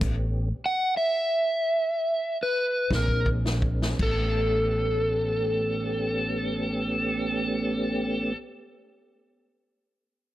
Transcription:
0.00 upright bass A1, tonewheel organ A3 B3 C#4 G4, kick, closed hi-hat, crash
0.66 electric slide guitar F#5
0.97 electric slide guitar E5
2.43 electric slide guitar B4
2.90 upright bass A#1, tonewheel organ A#3 C4 D4 G#4, kick, snare
2.95 electric slide guitar A#4
3.08 kick
3.26 kick
3.46 snare
3.62 kick
3.82 snare
3.99 upright bass A1, tonewheel organ A3 B3 C#4 G4, kick, crash
4.03 electric slide guitar A4

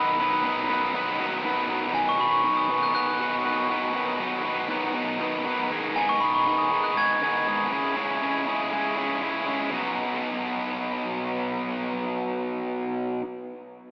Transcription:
Already playing: distorted electric guitar B2 D#3 F#3 B3 D#4 B4, glockenspiel B5
0.21 distorted electric guitar B2 D#3 F#3 B3 D#4 B4
0.45 distorted electric guitar B2 D#3 F#3 B3 D#4 B4
0.69 distorted electric guitar B2 D#3 F#3 B3 D#4 B4
0.93 distorted electric guitar B2 D#3 F#3 B3 D#4 B4
1.19 distorted electric guitar B2 D#3 F#3 B3 D#4 B4
1.44 distorted electric guitar B2 D#3 F#3 B3 D#4 B4
1.68 distorted electric guitar B2 D#3 F#3 B3 D#4 B4
1.92 distorted electric guitar B2 D#3 F#3 B3 D#4 B4, glockenspiel G#5
2.09 glockenspiel C#6
2.18 distorted electric guitar B2 D#3 F#3 B3 D#4 B4, glockenspiel B5
2.33 glockenspiel C#6
2.43 distorted electric guitar B2 D#3 F#3 B3 D#4 B4
2.57 glockenspiel D#6
2.69 distorted electric guitar B2 D#3 F#3 B3 D#4 B4
2.83 glockenspiel F#6
2.94 distorted electric guitar B2 D#3 F#3 B3 D#4 B4, glockenspiel F#6
3.19 distorted electric guitar B2 D#3 F#3 B3 D#4 B4
3.43 distorted electric guitar B2 D#3 F#3 B3 D#4 B4
3.69 distorted electric guitar B2 D#3 F#3 B3 D#4 B4
3.94 distorted electric guitar B2 D#3 F#3 B3 D#4 B4
4.19 distorted electric guitar B2 D#3 F#3 B3 D#4 B4
4.43 distorted electric guitar B2 D#3 F#3 B3 D#4 B4
4.68 distorted electric guitar B2 D#3 F#3 B3 D#4 B4
4.94 distorted electric guitar B2 D#3 F#3 B3 D#4 B4
5.20 distorted electric guitar B2 D#3 F#3 B3 D#4 B4
5.45 distorted electric guitar B2 D#3 F#3 B3 D#4 B4
5.70 distorted electric guitar G#2 D#3 G#3 B3 D#4 G#4
5.96 distorted electric guitar G#2 D#3 G#3 B3 D#4 G#4, glockenspiel G#5
6.09 glockenspiel C#6
6.20 distorted electric guitar G#2 D#3 G#3 B3 D#4 G#4, glockenspiel B5
6.35 glockenspiel C#6
6.47 distorted electric guitar G#2 D#3 G#3 B3 D#4 G#4
6.58 glockenspiel D#6
6.71 distorted electric guitar G#2 D#3 G#3 B3 D#4 G#4
6.84 glockenspiel F#6
6.96 distorted electric guitar G#2 D#3 G#3 B3 D#4 G#4, glockenspiel G#6
7.21 distorted electric guitar G#2 D#3 G#3 B3 D#4 G#4
7.46 distorted electric guitar G#2 D#3 G#3 B3 D#4 G#4
7.72 distorted electric guitar C#3 G#3 C#4 E4 G#4
7.96 distorted electric guitar C#3 G#3 C#4 E4 G#4
8.22 distorted electric guitar C#3 G#3 C#4 E4 G#4
8.47 distorted electric guitar C#3 G#3 C#4 E4 G#4
8.72 distorted electric guitar C#3 G#3 C#4 E4 G#4
8.97 distorted electric guitar C#3 G#3 C#4 E4 G#4
9.22 distorted electric guitar C#3 G#3 C#4 E4 G#4
9.46 distorted electric guitar C#3 G#3 C#4 E4 G#4
9.70 distorted electric guitar B2 F#3 B3 D#4
9.75 distorted electric guitar F#4

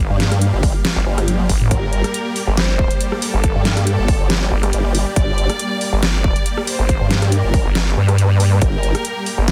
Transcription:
Already playing: supersaw synth G3 A#3 G4 F5
0.10 wobble bass G2
0.20 snare, closed hi-hat
0.32 cross-stick, closed hi-hat
0.42 closed hi-hat
0.53 wobble bass G1
0.63 kick, open hi-hat
0.85 snare, closed hi-hat
0.96 wobble bass G1
1.06 wobble bass G1
1.18 cross-stick, closed hi-hat
1.28 closed hi-hat, high tom
1.40 high tom
1.49 wobble bass G1, kick, open hi-hat
1.61 mid tom
1.71 wobble bass G1, violin section A#4, supersaw synth D5, kick, closed hi-hat
1.93 closed hi-hat
2.04 cross-stick, closed hi-hat
2.14 closed hi-hat
2.36 open hi-hat
2.47 wobble bass G1
2.57 violin section C5, snare, closed hi-hat
2.79 kick
2.91 closed hi-hat
3.01 closed hi-hat
3.12 cross-stick
3.22 violin section A4, open hi-hat
3.34 wobble bass G1
3.44 kick, closed hi-hat
3.55 wobble bass G2
3.65 snare, closed hi-hat
3.77 cross-stick, closed hi-hat
3.87 violin section A4, closed hi-hat
3.99 wobble bass G1
4.08 kick, open hi-hat
4.20 wobble bass G1
4.30 snare, closed hi-hat
4.52 wobble bass G1
4.63 cross-stick, closed hi-hat
4.73 wobble bass G1, closed hi-hat
4.95 open hi-hat
5.16 wobble bass G1, violin section D5, kick, closed hi-hat
5.38 closed hi-hat
5.50 cross-stick, closed hi-hat
5.59 closed hi-hat
5.81 open hi-hat
5.93 wobble bass G1
6.03 violin section D5, snare, closed hi-hat
6.24 kick
6.36 closed hi-hat
6.46 closed hi-hat
6.57 cross-stick
6.67 violin section C5, open hi-hat
6.79 wobble bass G1
6.89 kick, closed hi-hat
7.01 wobble bass G2
7.11 snare, closed hi-hat
7.22 cross-stick, closed hi-hat
7.32 violin section A#4, closed hi-hat
7.44 wobble bass G1
7.54 kick, open hi-hat
7.65 wobble bass G1
7.75 snare, closed hi-hat
7.97 wobble bass G2
8.09 cross-stick, closed hi-hat
8.18 closed hi-hat
8.40 open hi-hat
8.62 wobble bass G1, violin section A#4, supersaw synth G5, kick, closed hi-hat
8.83 closed hi-hat
8.95 cross-stick, closed hi-hat
9.05 closed hi-hat
9.26 open hi-hat
9.38 wobble bass G1
9.48 violin section C5, snare, closed hi-hat

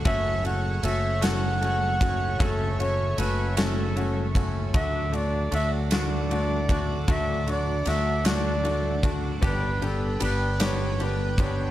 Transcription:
Already playing: analog synth pad A4 F#5
0.05 fretless electric bass F#1, clean electric guitar F#2 C#3 F#3 A3 C#4 F#4, grand piano A3 C#4 F#4, analog synth pad C#5 C#6, flugelhorn E5, kick, ride
0.44 grand piano A3 C#4 F#4, flugelhorn F#5, ride
0.83 fretless electric bass F#1, clean electric guitar F#3 A3 C#4 F#4, grand piano A3 C#4 F#4, flugelhorn E5, ride
1.21 clean electric guitar F#2 C#3 F#3 A3 C#4 F#4, grand piano A3 C#4 F#4, flugelhorn F#5, snare, ride
1.61 grand piano A3 C#4 F#4, ride
2.00 clean electric guitar F#3 A3 C#4 F#4, grand piano A3 C#4 F#4, kick, ride
2.39 fretless electric bass F#1, clean electric guitar F#2 C#3 F#3 A3 C#4 F#4, grand piano A3 C#4 F#4, flugelhorn A4, analog synth pad E5, kick, ride
2.79 grand piano A3 C#4 F#4, flugelhorn C#5, ride
3.18 fretless electric bass F#1, clean electric guitar F#3 A3 C#4 F#4, grand piano A3 C#4 F#4, flugelhorn B4, ride
3.57 clean electric guitar F#2 C#3 F#3 A3 C#4 F#4, grand piano A3 C#4 F#4, flugelhorn A4, snare, ride
3.96 grand piano A3 C#4 F#4, ride
4.34 clean electric guitar F#3 A3 C#4 F#4, grand piano A3 C#4 F#4, kick, ride
4.73 fretless electric bass D2, clean electric guitar D3 F#3 A3 D4 F#4, grand piano A3 D4 F#4, analog synth pad D4 F#5 D6, flugelhorn E5, kick, ride
5.12 grand piano A3 D4 F#4, flugelhorn D5, ride
5.51 fretless electric bass D2, clean electric guitar F#3 A3 D4 F#4, grand piano A3 D4 F#4, flugelhorn E5, ride
5.91 clean electric guitar D3 F#3 A3 D4 F#4, grand piano A3 D4 F#4, flugelhorn D5, snare, ride
6.31 grand piano A3 D4 F#4, ride
6.69 grand piano A3 D4 F#4, clean electric guitar A3 D4 F#4, kick, ride
7.08 fretless electric bass D2, clean electric guitar D3 F#3 A3 D4 F#4, grand piano A3 D4 F#4, flugelhorn E5, kick, ride
7.47 grand piano A3 D4 F#4, flugelhorn D5, ride
7.85 fretless electric bass D2, clean electric guitar F#3 A3 D4 F#4, grand piano A3 D4 F#4, flugelhorn E5, snare, ride
8.25 clean electric guitar D3 F#3 A3 D4 F#4, grand piano A3 D4 F#4, flugelhorn D5, snare, ride
8.64 grand piano A3 D4 F#4, ride
9.03 grand piano A3 D4 F#4, clean electric guitar A3 D4 F#4, kick, ride
9.41 fretless electric bass G1, clean electric guitar G2 D3 G3 B3 D4 G4, grand piano B3 D4 G4, analog synth pad B4 G5, kick, ride
9.46 flugelhorn B4
9.82 grand piano B3 D4 G4, flugelhorn A4, ride
10.20 fretless electric bass G1, clean electric guitar G3 B3 D4 G4, grand piano B3 D4 G4, flugelhorn B4, ride
10.60 clean electric guitar G2 D3 G3 B3 D4 G4, grand piano B3 D4 G4, flugelhorn C#5, snare, ride
11.00 grand piano B3 D4 G4, flugelhorn B4, ride
11.38 clean electric guitar G3 B3 D4 G4, grand piano B3 D4 G4, flugelhorn C#5, kick, ride

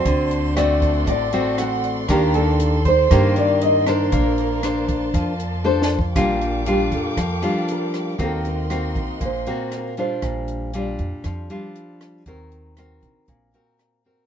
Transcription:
Already playing: nylon-string guitar A3 C4 F#4 C5, soprano saxophone C5, violin section D5 C6
0.05 upright bass D2, nylon-string guitar D3, violin section A4 F#5, kick, closed hi-hat
0.31 closed hi-hat
0.56 nylon-string guitar A3 C4 F#4 D5, soprano saxophone D5, cross-stick, closed hi-hat
0.82 kick, closed hi-hat
1.07 upright bass A1, nylon-string guitar A2 D5, soprano saxophone D5, kick, closed hi-hat
1.33 nylon-string guitar A3 C4 F#4, closed hi-hat
1.58 soprano saxophone F#5, nylon-string guitar F#5, cross-stick, closed hi-hat
1.84 closed hi-hat
2.09 upright bass D#2, nylon-string guitar D#3 A#3 D4 G4 A#4, violin section A#3 C5, soprano saxophone A#4, kick, cross-stick, closed hi-hat
2.34 soprano saxophone A4, nylon-string guitar A4, closed hi-hat
2.60 closed hi-hat
2.85 soprano saxophone C5, nylon-string guitar C5, kick, closed hi-hat
3.11 upright bass G2, nylon-string guitar D#3 A#3 D4 G4, kick, cross-stick, closed hi-hat
3.36 soprano saxophone D5, nylon-string guitar D5, closed hi-hat
3.61 soprano saxophone D#5, nylon-string guitar D#5, closed hi-hat
3.86 nylon-string guitar D4 A#4 C5, soprano saxophone A#4, cross-stick, closed hi-hat
4.12 upright bass A#1, nylon-string guitar A#3, violin section A5, kick, closed hi-hat
4.38 closed hi-hat
4.63 nylon-string guitar D4 C5, cross-stick, closed hi-hat
4.88 kick, closed hi-hat
5.14 upright bass F2, nylon-string guitar F3, kick, closed hi-hat
5.40 closed hi-hat
5.64 nylon-string guitar D4 A4 C5, high tom
5.82 snare
5.99 kick
6.16 upright bass A#1, nylon-string guitar A#2 G3 D4 F4, violin section A#3 F5 G5 D6, kick, cross-stick, closed hi-hat
6.41 closed hi-hat
6.66 nylon-string guitar G3 D4 F4, closed hi-hat
6.71 nylon-string guitar G4
6.92 nylon-string guitar A4, kick, closed hi-hat
7.17 upright bass F2, nylon-string guitar F3, kick, cross-stick, closed hi-hat
7.42 nylon-string guitar G3 D4 F4, closed hi-hat
7.68 nylon-string guitar A#4, closed hi-hat
7.94 cross-stick, closed hi-hat
8.18 upright bass D#2, nylon-string guitar D#3 A#3 C4 F#4, violin section A#4 D#5 F#5 C6, kick, closed hi-hat
8.23 nylon-string guitar A4
8.45 nylon-string guitar A#4, closed hi-hat
8.70 nylon-string guitar A#3 C4 F#4, cross-stick, closed hi-hat
8.95 upright bass A#1, kick, closed hi-hat
9.21 upright bass A#1, nylon-string guitar A#2, kick, closed hi-hat
9.25 nylon-string guitar C5
9.46 nylon-string guitar A#3 C4 F#4, closed hi-hat
9.72 cross-stick, closed hi-hat
9.77 nylon-string guitar A#4
9.97 nylon-string guitar G3 D4 F4 C5, closed hi-hat
10.22 upright bass A#1, nylon-string guitar A#2, kick, cross-stick, closed hi-hat
10.48 closed hi-hat
10.73 nylon-string guitar G3 D4 F4, closed hi-hat
10.78 nylon-string guitar D5
10.99 upright bass F2, kick, closed hi-hat
11.24 upright bass F2, nylon-string guitar F3, kick, cross-stick, closed hi-hat
11.50 nylon-string guitar G3 D4 F4, closed hi-hat
11.76 closed hi-hat
12.01 cross-stick, closed hi-hat
12.26 upright bass D#2, nylon-string guitar D#3 C4 F#4 A#4, kick, closed hi-hat
12.52 closed hi-hat
12.77 nylon-string guitar C4 F#4 A#4, cross-stick, closed hi-hat
13.03 upright bass A#1, kick, closed hi-hat
13.28 upright bass A#1, nylon-string guitar A#2, kick, closed hi-hat
13.54 nylon-string guitar C4 F#4 A#4, closed hi-hat
13.79 cross-stick, closed hi-hat
14.05 nylon-string guitar C4 F#4 A#4, closed hi-hat

